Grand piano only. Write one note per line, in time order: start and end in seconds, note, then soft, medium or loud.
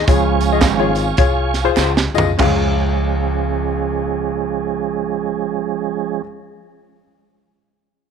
0.09 0.92 C#3 medium
0.09 0.37 F4 medium
0.09 0.37 G#4 medium
0.09 0.36 C#5 medium
0.52 0.65 F4 medium
0.52 0.65 G#4 medium
0.52 0.65 D#5 medium
0.79 1.04 F4 medium
0.79 1.04 G#4 medium
0.79 1.04 C#5 loud
1.18 1.49 F4 medium
1.18 1.49 G#4 medium
1.18 1.49 C#5 loud
1.65 1.90 F4 medium
1.65 1.90 G#4 medium
1.65 1.90 C5 loud
2.14 2.29 F4 medium
2.14 2.29 G#4 medium
2.14 2.29 D#5 medium
2.38 6.21 C#2 medium
2.38 6.19 C#4 medium
2.38 6.20 F4 medium
2.38 6.21 G#4 medium
2.38 6.22 F5 loud